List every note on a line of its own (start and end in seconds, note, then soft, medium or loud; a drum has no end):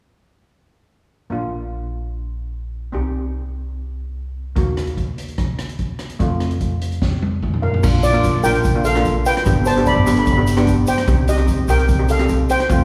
1.30 2.90 A#1 medium
1.30 2.90 A#3 medium
1.30 2.91 D4 medium
1.30 2.91 F4 medium
2.92 4.54 C2 medium
2.92 4.53 C4 medium
2.92 4.54 D#4 medium
2.92 4.54 G4 medium
4.55 6.17 D#2 medium
4.55 6.16 A#3 medium
4.55 6.17 D#4 medium
4.55 6.18 F#4 medium
4.55 kick medium
4.55 closed hi-hat medium
4.77 cross-stick medium
4.77 closed hi-hat medium
4.87 closed hi-hat soft
4.97 kick medium
4.97 closed hi-hat medium
5.18 closed hi-hat medium
5.28 closed hi-hat medium
5.38 kick medium
5.38 cross-stick medium
5.38 closed hi-hat medium
5.59 cross-stick medium
5.59 closed hi-hat medium
5.69 closed hi-hat medium
5.79 kick medium
5.79 closed hi-hat medium
5.99 cross-stick medium
5.99 closed hi-hat medium
6.10 closed hi-hat medium
6.19 7.80 F2 medium
6.19 7.80 A3 medium
6.19 7.80 C4 medium
6.19 7.81 F4 medium
6.19 kick loud
6.19 closed hi-hat medium
6.40 cross-stick medium
6.40 closed hi-hat medium
6.51 closed hi-hat medium
6.61 kick medium
6.61 closed hi-hat medium
6.82 closed hi-hat medium
6.92 closed hi-hat medium
7.02 kick loud
7.02 snare medium
7.22 high tom medium
7.43 kick medium
7.43 mid tom medium
7.54 mid tom medium
7.62 8.01 A#4 medium
7.62 8.05 F5 medium
7.62 floor tom medium
7.74 floor tom medium
7.83 8.30 A#1 medium
7.83 8.02 A#3 medium
7.83 8.02 D4 medium
7.83 8.02 F4 medium
7.83 kick loud
7.83 crash loud
7.83 shaker medium
8.03 8.41 F4 medium
8.03 8.45 D5 medium
8.03 closed hi-hat medium
8.03 shaker medium
8.13 8.32 A#3 medium
8.13 8.32 D4 medium
8.13 8.32 F4 medium
8.13 closed hi-hat medium
8.23 kick medium
8.23 closed hi-hat medium
8.23 shaker medium
8.34 8.43 A#1 medium
8.44 9.22 A#1 medium
8.44 8.63 A#3 medium
8.44 8.63 D4 medium
8.44 8.63 F4 medium
8.44 8.82 A#4 medium
8.44 8.86 G5 medium
8.44 closed hi-hat medium
8.44 shaker medium
8.55 closed hi-hat medium
8.64 kick loud
8.64 closed hi-hat medium
8.64 shaker medium
8.75 8.87 A#3 medium
8.75 8.87 D4 medium
8.75 8.87 F4 medium
8.84 9.23 A4 medium
8.84 9.27 F5 medium
8.84 closed hi-hat medium
8.84 shaker medium
8.95 9.26 A#3 medium
8.95 9.26 D4 medium
8.95 9.26 F4 medium
8.95 cross-stick medium
8.95 closed hi-hat medium
8.95 shaker soft
9.05 kick medium
9.05 closed hi-hat medium
9.05 shaker medium
9.26 9.64 B4 medium
9.26 9.68 G5 medium
9.26 closed hi-hat medium
9.26 shaker medium
9.37 cross-stick medium
9.37 closed hi-hat medium
9.45 9.93 G1 loud
9.45 9.64 B3 medium
9.45 9.64 D4 medium
9.45 9.64 G4 medium
9.45 kick loud
9.45 closed hi-hat medium
9.45 shaker medium
9.65 9.85 C5 medium
9.65 9.85 A5 medium
9.65 closed hi-hat medium
9.65 shaker medium
9.76 9.95 B3 medium
9.76 9.95 D4 medium
9.76 9.96 G4 medium
9.76 closed hi-hat medium
9.86 9.94 D5 medium
9.86 9.94 B5 medium
9.86 kick medium
9.86 closed hi-hat medium
9.86 shaker medium
9.96 10.06 G1 medium
10.03 10.83 G1 loud
10.03 10.25 B3 medium
10.03 10.25 D4 medium
10.03 10.09 B5 medium
10.03 closed hi-hat medium
10.03 shaker medium
10.07 10.25 G4 medium
10.07 10.17 B5 medium
10.17 10.25 B5 medium
10.17 closed hi-hat medium
10.26 10.32 B5 medium
10.26 kick loud
10.26 closed hi-hat medium
10.26 shaker medium
10.33 10.39 B5 medium
10.37 10.49 B3 medium
10.37 10.49 D4 medium
10.37 10.50 G4 medium
10.47 closed hi-hat medium
10.47 shaker medium
10.57 10.87 B3 medium
10.57 10.88 D4 medium
10.57 10.88 G4 loud
10.57 cross-stick medium
10.57 closed hi-hat medium
10.67 kick medium
10.67 closed hi-hat medium
10.67 shaker medium
10.87 11.26 C5 medium
10.87 11.30 G5 medium
10.87 closed hi-hat medium
10.87 shaker medium
10.98 cross-stick medium
10.98 closed hi-hat medium
11.07 11.55 C2 loud
11.07 11.26 C4 medium
11.07 11.26 D#4 medium
11.07 11.27 G4 medium
11.07 kick loud
11.07 closed hi-hat medium
11.07 shaker medium
11.28 11.66 G4 medium
11.28 11.70 D#5 medium
11.28 closed hi-hat medium
11.28 shaker medium
11.37 11.56 C4 medium
11.37 11.56 D#4 medium
11.37 11.57 G4 medium
11.37 closed hi-hat medium
11.48 kick medium
11.48 closed hi-hat medium
11.48 shaker medium
11.58 11.68 C2 medium
11.68 12.46 C2 medium
11.68 11.87 C4 medium
11.68 11.88 D#4 medium
11.68 11.88 G4 medium
11.68 12.07 A#4 medium
11.68 12.11 G5 medium
11.68 closed hi-hat medium
11.68 shaker medium
11.79 closed hi-hat medium
11.88 kick loud
11.88 closed hi-hat medium
11.88 shaker medium
11.99 12.11 C4 medium
11.99 12.12 D#4 medium
11.99 12.12 G4 medium
12.09 12.47 A4 medium
12.09 12.52 F5 medium
12.09 closed hi-hat medium
12.09 shaker medium
12.19 12.50 C4 medium
12.19 12.50 D#4 medium
12.19 12.50 G4 medium
12.19 cross-stick medium
12.19 closed hi-hat medium
12.19 shaker soft
12.29 kick medium
12.29 closed hi-hat medium
12.29 shaker medium
12.49 12.84 C5 medium
12.49 12.84 G5 medium
12.49 closed hi-hat medium
12.49 shaker medium
12.60 cross-stick medium
12.60 closed hi-hat medium
12.69 12.84 F2 loud
12.69 12.84 A3 medium
12.69 12.84 C4 medium
12.69 12.84 F4 medium
12.69 kick loud
12.69 closed hi-hat medium
12.69 shaker medium